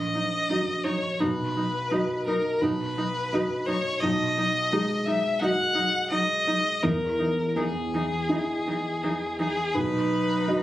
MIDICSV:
0, 0, Header, 1, 5, 480
1, 0, Start_track
1, 0, Key_signature, 5, "major"
1, 0, Tempo, 710900
1, 814, Time_signature, 4, 2, 24, 8
1, 1771, Tempo, 697674
1, 4171, Tempo, 726392
1, 7156, End_track
2, 0, Start_track
2, 0, Title_t, "Violin"
2, 0, Program_c, 0, 40
2, 0, Note_on_c, 0, 75, 69
2, 569, Note_on_c, 0, 73, 68
2, 579, Note_off_c, 0, 75, 0
2, 810, Note_on_c, 0, 71, 72
2, 821, Note_off_c, 0, 73, 0
2, 1523, Note_off_c, 0, 71, 0
2, 1527, Note_on_c, 0, 70, 60
2, 1766, Note_on_c, 0, 71, 79
2, 1776, Note_off_c, 0, 70, 0
2, 2484, Note_on_c, 0, 73, 79
2, 2495, Note_off_c, 0, 71, 0
2, 2716, Note_on_c, 0, 75, 77
2, 2727, Note_off_c, 0, 73, 0
2, 3446, Note_on_c, 0, 76, 78
2, 3457, Note_off_c, 0, 75, 0
2, 3682, Note_on_c, 0, 78, 98
2, 3692, Note_off_c, 0, 76, 0
2, 4159, Note_off_c, 0, 78, 0
2, 4163, Note_on_c, 0, 75, 82
2, 4647, Note_on_c, 0, 70, 79
2, 4657, Note_off_c, 0, 75, 0
2, 5134, Note_on_c, 0, 68, 66
2, 5144, Note_off_c, 0, 70, 0
2, 6333, Note_off_c, 0, 68, 0
2, 6337, Note_on_c, 0, 68, 70
2, 6575, Note_on_c, 0, 71, 83
2, 6585, Note_off_c, 0, 68, 0
2, 7156, Note_off_c, 0, 71, 0
2, 7156, End_track
3, 0, Start_track
3, 0, Title_t, "Felt piano"
3, 0, Program_c, 1, 0
3, 0, Control_c, 1, 64, 127
3, 0, Note_on_c, 1, 34, 42
3, 340, Note_on_c, 1, 66, 33
3, 340, Note_on_c, 1, 75, 40
3, 790, Note_off_c, 1, 66, 0
3, 791, Note_off_c, 1, 75, 0
3, 792, Note_off_c, 1, 34, 0
3, 819, Note_on_c, 1, 35, 49
3, 827, Control_c, 1, 64, 0
3, 957, Control_c, 1, 64, 127
3, 1294, Note_on_c, 1, 66, 39
3, 1300, Note_on_c, 1, 75, 42
3, 1744, Note_off_c, 1, 66, 0
3, 1747, Note_off_c, 1, 35, 0
3, 1747, Note_off_c, 1, 75, 0
3, 1763, Note_on_c, 1, 35, 57
3, 1784, Control_c, 1, 64, 0
3, 1881, Control_c, 1, 64, 127
3, 2255, Note_on_c, 1, 66, 46
3, 2256, Note_on_c, 1, 75, 45
3, 2701, Note_off_c, 1, 35, 0
3, 2707, Note_off_c, 1, 66, 0
3, 2707, Note_off_c, 1, 75, 0
3, 2735, Note_on_c, 1, 35, 68
3, 2744, Control_c, 1, 64, 0
3, 2846, Control_c, 1, 64, 127
3, 3219, Note_on_c, 1, 56, 55
3, 3702, Note_on_c, 1, 66, 47
3, 3703, Note_on_c, 1, 75, 49
3, 3980, Note_off_c, 1, 56, 0
3, 4622, Note_off_c, 1, 35, 0
3, 4626, Note_off_c, 1, 66, 0
3, 4627, Note_off_c, 1, 75, 0
3, 4647, Note_on_c, 1, 40, 52
3, 4659, Control_c, 1, 64, 0
3, 4777, Control_c, 1, 64, 127
3, 5124, Note_on_c, 1, 59, 45
3, 5612, Note_on_c, 1, 64, 40
3, 5615, Note_on_c, 1, 75, 37
3, 5902, Note_off_c, 1, 59, 0
3, 6549, Note_off_c, 1, 64, 0
3, 6551, Note_off_c, 1, 40, 0
3, 6551, Note_off_c, 1, 75, 0
3, 6569, Note_on_c, 1, 35, 54
3, 6589, Control_c, 1, 64, 0
3, 6705, Control_c, 1, 64, 127
3, 7057, Note_on_c, 1, 66, 41
3, 7057, Note_on_c, 1, 75, 42
3, 7156, Note_off_c, 1, 35, 0
3, 7156, Note_off_c, 1, 66, 0
3, 7156, Note_off_c, 1, 75, 0
3, 7156, End_track
4, 0, Start_track
4, 0, Title_t, "Viola"
4, 0, Program_c, 2, 41
4, 96, Note_on_c, 2, 63, 37
4, 150, Note_off_c, 2, 63, 0
4, 334, Note_on_c, 2, 63, 44
4, 388, Note_off_c, 2, 63, 0
4, 571, Note_on_c, 2, 63, 40
4, 625, Note_off_c, 2, 63, 0
4, 809, Note_on_c, 2, 63, 47
4, 863, Note_off_c, 2, 63, 0
4, 1056, Note_on_c, 2, 63, 34
4, 1110, Note_off_c, 2, 63, 0
4, 1291, Note_on_c, 2, 63, 45
4, 1345, Note_off_c, 2, 63, 0
4, 1537, Note_on_c, 2, 63, 41
4, 1592, Note_off_c, 2, 63, 0
4, 1779, Note_on_c, 2, 63, 41
4, 1834, Note_off_c, 2, 63, 0
4, 2014, Note_on_c, 2, 63, 43
4, 2069, Note_off_c, 2, 63, 0
4, 2260, Note_on_c, 2, 63, 54
4, 2315, Note_off_c, 2, 63, 0
4, 2496, Note_on_c, 2, 63, 46
4, 2551, Note_off_c, 2, 63, 0
4, 2740, Note_on_c, 2, 63, 52
4, 2795, Note_off_c, 2, 63, 0
4, 2978, Note_on_c, 2, 63, 45
4, 3033, Note_off_c, 2, 63, 0
4, 3217, Note_on_c, 2, 63, 53
4, 3272, Note_off_c, 2, 63, 0
4, 3455, Note_on_c, 2, 63, 45
4, 3510, Note_off_c, 2, 63, 0
4, 3690, Note_on_c, 2, 63, 53
4, 3745, Note_off_c, 2, 63, 0
4, 3921, Note_on_c, 2, 63, 49
4, 3976, Note_off_c, 2, 63, 0
4, 4169, Note_on_c, 2, 63, 52
4, 4222, Note_off_c, 2, 63, 0
4, 4410, Note_on_c, 2, 63, 46
4, 4463, Note_off_c, 2, 63, 0
4, 4645, Note_on_c, 2, 63, 46
4, 4698, Note_off_c, 2, 63, 0
4, 4883, Note_on_c, 2, 63, 40
4, 4936, Note_off_c, 2, 63, 0
4, 5130, Note_on_c, 2, 63, 48
4, 5183, Note_off_c, 2, 63, 0
4, 5381, Note_on_c, 2, 63, 44
4, 5434, Note_off_c, 2, 63, 0
4, 5624, Note_on_c, 2, 63, 41
4, 5677, Note_off_c, 2, 63, 0
4, 5862, Note_on_c, 2, 63, 34
4, 5915, Note_off_c, 2, 63, 0
4, 6100, Note_on_c, 2, 63, 47
4, 6153, Note_off_c, 2, 63, 0
4, 6337, Note_on_c, 2, 63, 40
4, 6390, Note_off_c, 2, 63, 0
4, 6577, Note_on_c, 2, 63, 52
4, 7156, Note_off_c, 2, 63, 0
4, 7156, End_track
5, 0, Start_track
5, 0, Title_t, "Cello"
5, 0, Program_c, 3, 42
5, 95, Note_on_c, 3, 54, 37
5, 149, Note_off_c, 3, 54, 0
5, 323, Note_on_c, 3, 54, 41
5, 378, Note_off_c, 3, 54, 0
5, 570, Note_on_c, 3, 54, 39
5, 624, Note_off_c, 3, 54, 0
5, 805, Note_on_c, 3, 54, 50
5, 859, Note_off_c, 3, 54, 0
5, 1043, Note_on_c, 3, 54, 40
5, 1097, Note_off_c, 3, 54, 0
5, 1283, Note_on_c, 3, 54, 47
5, 1337, Note_off_c, 3, 54, 0
5, 1517, Note_on_c, 3, 54, 33
5, 1571, Note_off_c, 3, 54, 0
5, 1767, Note_on_c, 3, 54, 42
5, 1822, Note_off_c, 3, 54, 0
5, 2001, Note_on_c, 3, 54, 44
5, 2056, Note_off_c, 3, 54, 0
5, 2254, Note_on_c, 3, 54, 45
5, 2309, Note_off_c, 3, 54, 0
5, 2481, Note_on_c, 3, 54, 45
5, 2536, Note_off_c, 3, 54, 0
5, 2722, Note_on_c, 3, 54, 62
5, 2777, Note_off_c, 3, 54, 0
5, 2967, Note_on_c, 3, 54, 52
5, 3022, Note_off_c, 3, 54, 0
5, 3206, Note_on_c, 3, 54, 59
5, 3261, Note_off_c, 3, 54, 0
5, 3451, Note_on_c, 3, 54, 42
5, 3506, Note_off_c, 3, 54, 0
5, 3678, Note_on_c, 3, 54, 53
5, 3733, Note_off_c, 3, 54, 0
5, 3928, Note_on_c, 3, 54, 46
5, 3983, Note_off_c, 3, 54, 0
5, 4169, Note_on_c, 3, 54, 54
5, 4222, Note_off_c, 3, 54, 0
5, 4404, Note_on_c, 3, 54, 45
5, 4456, Note_off_c, 3, 54, 0
5, 4649, Note_on_c, 3, 52, 60
5, 4702, Note_off_c, 3, 52, 0
5, 4890, Note_on_c, 3, 52, 42
5, 4943, Note_off_c, 3, 52, 0
5, 5135, Note_on_c, 3, 52, 51
5, 5187, Note_off_c, 3, 52, 0
5, 5380, Note_on_c, 3, 52, 44
5, 5433, Note_off_c, 3, 52, 0
5, 5621, Note_on_c, 3, 52, 40
5, 5674, Note_off_c, 3, 52, 0
5, 5862, Note_on_c, 3, 52, 41
5, 5915, Note_off_c, 3, 52, 0
5, 6102, Note_on_c, 3, 52, 42
5, 6155, Note_off_c, 3, 52, 0
5, 6340, Note_on_c, 3, 52, 41
5, 6393, Note_off_c, 3, 52, 0
5, 6572, Note_on_c, 3, 54, 56
5, 7156, Note_off_c, 3, 54, 0
5, 7156, End_track
0, 0, End_of_file